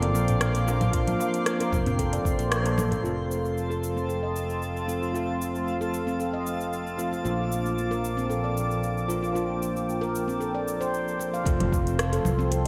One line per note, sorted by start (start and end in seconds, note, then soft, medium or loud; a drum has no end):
0.00 0.14 F1 loud
0.00 0.63 F3 loud
0.00 0.63 A#3 medium
0.00 3.01 A#3 medium
0.00 3.05 C4 medium
0.00 0.64 D4 medium
0.00 0.64 F4 medium
0.00 3.05 C5 medium
0.00 0.53 D5 medium
0.00 3.01 F5 medium
0.00 3.01 D6 medium
0.00 closed hi-hat soft
0.00 darbuka ka soft
0.00 darbuka tek medium
0.14 1.12 A#1 medium
0.14 darbuka tek medium
0.14 cabasa medium
0.28 closed hi-hat soft
0.28 darbuka dum medium
0.28 cabasa soft
0.41 cross-stick loud
0.41 closed hi-hat medium
0.41 cabasa soft
0.55 closed hi-hat soft
0.55 cabasa soft
0.66 0.90 F3 medium
0.66 0.90 A#3 medium
0.66 0.90 D4 medium
0.66 0.90 F4 medium
0.66 0.75 F4 medium
0.66 0.91 A#4 medium
0.66 darbuka tek medium
0.66 cabasa medium
0.81 0.92 F4 medium
0.81 closed hi-hat soft
0.81 low conga medium
0.81 darbuka dum medium
0.81 cabasa soft
0.91 2.73 F3 loud
0.91 2.74 A#3 loud
0.91 2.75 D4 medium
0.91 1.45 F4 loud
0.91 2.75 F4 medium
0.91 kick loud
0.91 closed hi-hat medium
0.91 cabasa soft
1.07 closed hi-hat soft
1.07 low conga medium
1.07 cabasa soft
1.20 darbuka tek medium
1.20 cabasa medium
1.34 closed hi-hat soft
1.34 cabasa soft
1.46 cross-stick loud
1.46 closed hi-hat medium
1.46 cabasa soft
1.60 1.85 A#4 loud
1.60 closed hi-hat soft
1.60 cabasa soft
1.72 2.18 F1 medium
1.72 kick loud
1.72 low conga medium
1.72 cabasa medium
1.86 1.98 C4 loud
1.86 closed hi-hat soft
1.86 darbuka tek medium
1.86 darbuka dum loud
1.86 cabasa soft
1.99 2.11 A4 medium
1.99 kick medium
1.99 closed hi-hat medium
1.99 cabasa soft
2.12 2.24 D5 medium
2.12 closed hi-hat soft
2.12 darbuka ka soft
2.12 darbuka tek medium
2.12 cabasa soft
2.25 2.34 F1 loud
2.25 kick loud
2.25 cabasa medium
2.39 2.96 A#1 loud
2.39 2.46 C5 medium
2.39 closed hi-hat soft
2.39 darbuka ka soft
2.39 cabasa soft
2.52 cross-stick loud
2.52 closed hi-hat medium
2.52 cabasa soft
2.65 2.76 A4 medium
2.65 closed hi-hat soft
2.65 darbuka ka medium
2.65 darbuka tek medium
2.65 cabasa soft
2.78 2.91 A4 medium
2.78 low conga medium
2.78 cabasa medium
2.91 3.03 A#4 medium
2.91 closed hi-hat soft
2.91 darbuka ka medium
2.91 darbuka dum medium
2.91 cabasa soft
3.02 7.23 F1 medium
3.02 4.84 F3 medium
3.02 4.85 A3 medium
3.02 11.47 A3 medium
3.02 4.85 C4 medium
3.02 3.55 F4 medium
3.02 4.86 F4 medium
3.02 7.21 A4 medium
3.02 9.32 F5 medium
3.02 11.47 A5 medium
3.02 7.21 C6 medium
3.02 cabasa soft
3.06 4.86 A4 medium
3.31 cabasa medium
3.45 cabasa soft
3.58 cabasa soft
3.70 3.95 A4 medium
3.70 cabasa soft
3.84 cabasa medium
3.97 4.09 C4 medium
3.97 cabasa soft
4.09 4.22 A4 medium
4.09 cabasa soft
4.23 4.74 D#5 medium
4.36 cabasa medium
4.50 cabasa soft
4.62 cabasa soft
4.77 cabasa soft
4.87 5.11 F3 medium
4.87 5.11 A3 medium
4.87 5.11 C4 medium
4.87 4.96 F4 medium
4.87 5.12 F4 medium
4.87 5.12 A4 medium
4.87 cabasa medium
5.02 5.13 F4 medium
5.02 cabasa soft
5.12 6.95 F3 medium
5.12 6.95 A3 medium
5.12 6.96 C4 medium
5.12 5.66 F4 medium
5.12 6.96 F4 medium
5.12 cabasa soft
5.17 6.97 A4 medium
5.42 cabasa medium
5.55 cabasa soft
5.68 cabasa soft
5.81 6.06 A4 medium
5.81 cabasa soft
5.94 cabasa medium
6.07 6.19 C4 medium
6.07 cabasa soft
6.20 6.32 A4 medium
6.20 cabasa soft
6.33 6.85 D#5 medium
6.47 cabasa medium
6.61 cabasa soft
6.73 cabasa soft
6.87 cabasa soft
6.97 7.21 F3 medium
6.97 7.22 A3 medium
6.97 7.22 C4 medium
6.97 7.07 F4 medium
6.97 7.22 F4 medium
6.97 7.22 A4 medium
6.97 cabasa medium
7.13 7.24 F4 medium
7.13 cabasa soft
7.23 11.44 A#1 medium
7.23 11.42 A#2 medium
7.23 9.05 F3 medium
7.23 9.06 A#3 medium
7.23 9.06 D4 medium
7.23 7.76 F4 medium
7.23 9.07 F4 medium
7.23 11.42 D6 medium
7.23 cabasa soft
7.52 cabasa medium
7.66 cabasa soft
7.78 cabasa soft
7.91 8.16 A#4 medium
7.91 cabasa soft
8.04 cabasa medium
8.17 8.29 C4 medium
8.17 cabasa soft
8.30 8.43 A4 medium
8.30 cabasa soft
8.44 8.95 D5 medium
8.57 cabasa medium
8.71 cabasa soft
8.83 cabasa soft
8.98 cabasa soft
9.08 9.31 F3 medium
9.08 9.32 A#3 medium
9.08 9.32 D4 medium
9.08 9.17 F4 medium
9.08 9.33 F4 medium
9.08 9.33 A#4 medium
9.08 cabasa medium
9.23 9.34 F4 medium
9.23 cabasa soft
9.33 11.15 F3 medium
9.33 11.16 A#3 medium
9.33 11.16 D4 medium
9.33 9.87 F4 medium
9.33 11.17 F4 medium
9.33 11.44 G5 medium
9.33 cabasa soft
9.62 cabasa medium
9.76 cabasa soft
9.89 cabasa soft
10.01 10.27 A#4 medium
10.01 cabasa soft
10.15 cabasa medium
10.28 10.40 C4 medium
10.28 cabasa soft
10.40 10.53 A4 medium
10.40 cabasa soft
10.55 10.66 D5 medium
10.68 cabasa medium
10.81 10.88 C5 loud
10.81 cabasa soft
10.94 cabasa soft
11.08 cabasa soft
11.19 11.32 C5 medium
11.19 cabasa medium
11.34 11.41 F5 medium
11.34 cabasa soft
11.44 12.18 F1 loud
11.44 12.68 F3 loud
11.44 12.68 A3 medium
11.44 12.68 C4 medium
11.44 11.97 F4 loud
11.44 12.68 F4 medium
11.44 12.68 A4 medium
11.44 12.68 A4 loud
11.44 12.68 F5 medium
11.44 12.68 C6 loud
11.44 kick loud
11.44 closed hi-hat medium
11.44 impact medium
11.44 cabasa soft
11.60 closed hi-hat soft
11.60 low conga medium
11.72 kick loud
11.72 cabasa medium
11.87 closed hi-hat soft
11.87 cabasa soft
11.99 cross-stick loud
11.99 closed hi-hat medium
11.99 cabasa soft
12.13 12.38 A4 medium
12.13 closed hi-hat soft
12.13 cabasa soft
12.25 12.68 C2 medium
12.25 low conga medium
12.25 cabasa medium
12.39 12.51 C4 loud
12.39 cabasa soft
12.51 12.64 A4 medium
12.51 closed hi-hat medium
12.51 cabasa soft